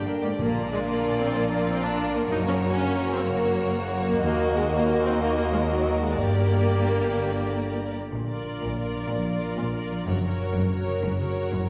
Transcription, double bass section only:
0, 0, Header, 1, 2, 480
1, 0, Start_track
1, 0, Tempo, 321371
1, 578, Time_signature, 12, 3, 24, 8
1, 8249, Tempo, 324500
1, 17374, End_track
2, 0, Start_track
2, 0, Title_t, "Double bass section"
2, 0, Program_c, 0, 48
2, 0, Note_on_c, 0, 31, 40
2, 465, Note_off_c, 0, 31, 0
2, 578, Note_on_c, 0, 34, 40
2, 3405, Note_off_c, 0, 34, 0
2, 3458, Note_on_c, 0, 30, 43
2, 6273, Note_off_c, 0, 30, 0
2, 6338, Note_on_c, 0, 39, 52
2, 9202, Note_on_c, 0, 31, 43
2, 9217, Note_off_c, 0, 39, 0
2, 11875, Note_off_c, 0, 31, 0
2, 12119, Note_on_c, 0, 34, 37
2, 12725, Note_off_c, 0, 34, 0
2, 12840, Note_on_c, 0, 34, 38
2, 13443, Note_off_c, 0, 34, 0
2, 13560, Note_on_c, 0, 34, 42
2, 14162, Note_off_c, 0, 34, 0
2, 14271, Note_on_c, 0, 34, 43
2, 14872, Note_off_c, 0, 34, 0
2, 14972, Note_on_c, 0, 30, 52
2, 15581, Note_off_c, 0, 30, 0
2, 15704, Note_on_c, 0, 30, 52
2, 16302, Note_off_c, 0, 30, 0
2, 16395, Note_on_c, 0, 30, 53
2, 17003, Note_off_c, 0, 30, 0
2, 17117, Note_on_c, 0, 30, 50
2, 17374, Note_off_c, 0, 30, 0
2, 17374, End_track
0, 0, End_of_file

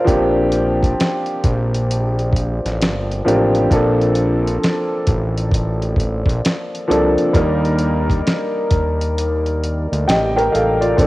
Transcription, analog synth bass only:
0, 0, Header, 1, 2, 480
1, 0, Start_track
1, 0, Key_signature, -2, "major"
1, 0, Tempo, 909091
1, 40, Time_signature, 4, 2, 24, 8
1, 5844, End_track
2, 0, Start_track
2, 0, Title_t, "Analog synth bass"
2, 0, Program_c, 0, 38
2, 42, Note_on_c, 0, 34, 94
2, 500, Note_off_c, 0, 34, 0
2, 764, Note_on_c, 0, 34, 86
2, 1375, Note_off_c, 0, 34, 0
2, 1401, Note_on_c, 0, 33, 94
2, 1486, Note_on_c, 0, 31, 96
2, 1494, Note_off_c, 0, 33, 0
2, 1704, Note_off_c, 0, 31, 0
2, 1726, Note_on_c, 0, 33, 84
2, 1944, Note_off_c, 0, 33, 0
2, 1963, Note_on_c, 0, 34, 110
2, 2420, Note_off_c, 0, 34, 0
2, 2683, Note_on_c, 0, 33, 88
2, 3294, Note_off_c, 0, 33, 0
2, 3307, Note_on_c, 0, 34, 81
2, 3389, Note_off_c, 0, 34, 0
2, 3646, Note_on_c, 0, 36, 89
2, 3785, Note_off_c, 0, 36, 0
2, 3881, Note_on_c, 0, 39, 108
2, 4339, Note_off_c, 0, 39, 0
2, 4602, Note_on_c, 0, 39, 75
2, 5214, Note_off_c, 0, 39, 0
2, 5239, Note_on_c, 0, 38, 90
2, 5315, Note_off_c, 0, 38, 0
2, 5325, Note_on_c, 0, 33, 97
2, 5543, Note_off_c, 0, 33, 0
2, 5567, Note_on_c, 0, 33, 86
2, 5784, Note_off_c, 0, 33, 0
2, 5803, Note_on_c, 0, 34, 107
2, 5844, Note_off_c, 0, 34, 0
2, 5844, End_track
0, 0, End_of_file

